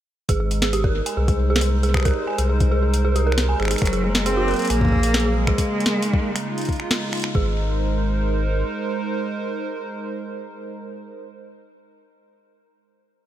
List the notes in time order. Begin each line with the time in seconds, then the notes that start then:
0.29 G#1 G#3 G#4, kick, closed hi-hat
0.39 D#4 G#4
0.51 closed hi-hat
0.62 G#4, snare
0.70 G4 A#4, closed hi-hat
0.84 A#4, kick
1.00 C5
1.06 G#5, closed hi-hat
1.17 C2 G#4
1.28 G#4, kick, closed hi-hat
1.50 G#4
1.56 snare
1.61 G#4, closed hi-hat
1.83 G#4, closed hi-hat
1.94 G4, finger snap, kick
1.97 finger snap
2.00 finger snap
2.03 A#4, finger snap
2.05 finger snap, kick, closed hi-hat
2.08 finger snap
2.11 finger snap
2.14 finger snap
2.27 G#5
2.38 C2 G#4, closed hi-hat
2.49 G#4
2.60 kick, closed hi-hat
2.71 G#4
2.83 G#4
2.94 closed hi-hat
3.05 G#4
3.16 G4, closed hi-hat
3.27 A#4
3.32 finger snap
3.38 snare, closed hi-hat
3.49 G#5
3.60 G#1 G#4, finger snap
3.63 finger snap
3.65 finger snap
3.68 finger snap
3.71 G#4, finger snap, closed hi-hat
3.76 finger snap, closed hi-hat
3.82 F#1 F#3, finger snap, kick, closed hi-hat
3.87 finger snap
3.93 G#4, closed hi-hat
3.97 A#3
4.04 G#3 G#4
4.15 snare
4.26 C4 G#4, closed hi-hat
4.37 F#4
4.48 G#4 A#4, closed hi-hat
4.51 closed hi-hat
4.54 closed hi-hat
4.56 closed hi-hat
4.59 closed hi-hat
4.62 C4, closed hi-hat
4.65 closed hi-hat
4.67 A#1 A#3 G#5, closed hi-hat
4.70 closed hi-hat
4.81 G#4, kick
4.85 kick
4.88 kick
4.92 G#4, kick
4.96 kick
5.00 kick, closed hi-hat
5.14 G#4, snare
5.20 closed hi-hat
5.25 G#4
5.36 G#3
5.47 G#4, finger snap, kick
5.58 C#3, kick, closed hi-hat
5.80 G#3, closed hi-hat
5.86 snare
5.94 D#4
6.02 closed hi-hat
6.13 kick
6.36 F4, finger snap, closed hi-hat
6.58 closed hi-hat
6.61 closed hi-hat
6.65 kick, closed hi-hat
6.69 closed hi-hat
6.72 closed hi-hat
6.76 finger snap, closed hi-hat
6.91 snare
7.13 finger snap, closed hi-hat
7.15 closed hi-hat
7.17 closed hi-hat
7.20 closed hi-hat
7.22 finger snap, closed hi-hat
7.35 G#1 G#3 G#4, kick
7.42 D#4
7.48 A#4
7.55 C5